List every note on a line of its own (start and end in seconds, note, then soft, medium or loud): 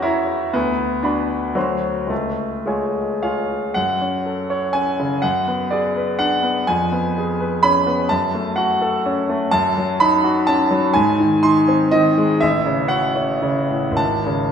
0.00 0.56 E2 medium
0.00 0.57 C#4 medium
0.00 0.54 E4 medium
0.00 0.04 F#4 medium
0.00 0.50 F#4 soft
0.00 0.03 C#5 soft
0.00 0.50 C#5 soft
0.00 0.04 A#5 soft
0.00 0.51 A#5 soft
0.54 1.02 D2 soft
0.54 1.03 B3 medium
1.03 1.55 D4 medium
1.03 1.51 F#4 soft
1.03 1.51 D5 soft
1.03 1.51 B5 soft
1.55 2.09 D2 soft
1.55 2.10 F#3 medium
1.55 2.07 F#4 soft
1.55 2.07 C5 soft
1.55 2.08 C6 soft
2.07 2.63 C#2 soft
2.07 2.66 A3 medium
2.66 3.49 G#3 soft
2.66 3.18 F4 soft
2.66 3.18 C#5 soft
2.66 3.19 G#5 soft
3.23 3.72 F4 soft
3.23 3.72 C#5 soft
3.23 3.76 F5 medium
3.23 3.72 G#5 soft
3.74 5.19 F#2 soft
3.74 4.73 F#5 medium
4.01 4.40 C#4 soft
4.26 4.64 A4 soft
4.50 4.89 C#5 soft
4.73 5.13 C#4 soft
4.73 5.22 G#5 medium
5.00 5.23 C#3 soft
5.22 6.63 F#2 soft
5.22 5.70 F#5 medium
5.48 5.86 B3 soft
5.71 6.10 G#4 soft
5.71 6.19 D5 medium
5.96 6.34 B4 soft
6.19 6.58 D4 soft
6.19 6.67 F#5 medium
6.43 6.67 B3 soft
6.67 8.07 F2 soft
6.67 7.62 G#5 medium
6.92 7.30 B3 soft
7.18 7.54 G#4 soft
7.40 7.77 B4 soft
7.63 8.01 C#4 soft
7.63 8.10 B5 medium
7.87 8.10 B3 soft
8.09 9.48 F#2 medium
8.09 8.57 A5 medium
8.34 8.72 A3 soft
8.56 8.95 F#4 soft
8.56 9.04 F#5 medium
8.82 9.19 A4 medium
9.06 9.43 C#4 soft
9.29 9.52 A3 soft
9.51 10.91 F#2 medium
9.51 9.99 A5 loud
9.78 10.14 F#3 soft
10.00 10.38 D#4 soft
10.00 10.47 B5 medium
10.24 10.62 F#4 soft
10.47 10.86 C#4 soft
10.47 10.95 A5 medium
10.71 10.95 F#3 medium
10.94 12.39 G#2 medium
10.94 11.43 G#5 medium
11.20 11.59 D#3 soft
11.43 11.84 D#4 soft
11.43 11.93 C6 medium
11.68 12.08 C4 soft
11.91 12.32 D#3 soft
11.91 12.42 D#5 medium
12.18 12.43 G#3 medium
12.41 13.94 A1 medium
12.41 12.91 E5 medium
12.66 13.07 C#3 soft
12.88 13.32 F#4 soft
12.88 13.96 F#5 medium
13.15 13.59 C#4 soft
13.42 13.86 C#3 soft
13.70 13.98 A2 soft
13.91 14.52 G#1 soft
13.97 14.52 A5 medium
14.26 14.52 C#3 soft